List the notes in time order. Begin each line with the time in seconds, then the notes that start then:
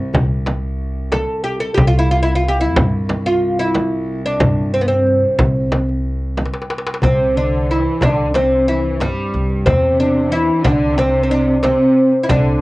Already playing: C2 C4
0.13 C2, darbuka dum, frame drum
0.46 darbuka tek, frame drum
1.12 A4, darbuka tek, frame drum
1.44 G4
1.60 A4
1.74 C2 G4, frame drum, darbuka dum
1.79 C2
1.87 F4
1.99 E4
2.11 F4
2.23 E4
2.35 F4
2.44 darbuka ka
2.48 G4
2.60 E4, darbuka ka
2.76 G2, darbuka dum, frame drum
3.09 darbuka tek, frame drum
3.26 F4
3.59 E4
3.75 darbuka tek, frame drum
4.26 D4
4.40 G2, frame drum, darbuka dum
4.74 C4
4.81 B3
4.88 C4
5.07 darbuka ka
5.39 C2, frame drum, darbuka dum
5.56 darbuka ka
5.72 darbuka tek, frame drum
5.89 darbuka ka
6.37 darbuka tek, frame drum
6.46 darbuka ka
6.54 darbuka tek
6.62 darbuka ka
6.70 darbuka tek
6.78 darbuka ka
6.87 darbuka tek
6.94 darbuka ka
7.02 C2 C3 C4, darbuka dum, frame drum
7.36 D3 D4
7.68 E3 E4
8.00 C2 D3 D4, darbuka dum, frame drum
8.34 C3 C4, darbuka tek, frame drum
8.68 E3 E4
9.00 G2 G3, darbuka tek, frame drum
9.34 C2
9.50 darbuka ka
9.65 E2 C3 C4, darbuka dum, frame drum
10.00 D4
10.31 E3 E4
10.63 C2 D3 D4, frame drum, darbuka dum
10.95 C3 C4, darbuka tek, frame drum
11.23 C4
11.31 D4
11.62 C3 C4, darbuka tek, frame drum
12.12 darbuka ka
12.23 E4
12.29 C2 D3 D4, darbuka dum, frame drum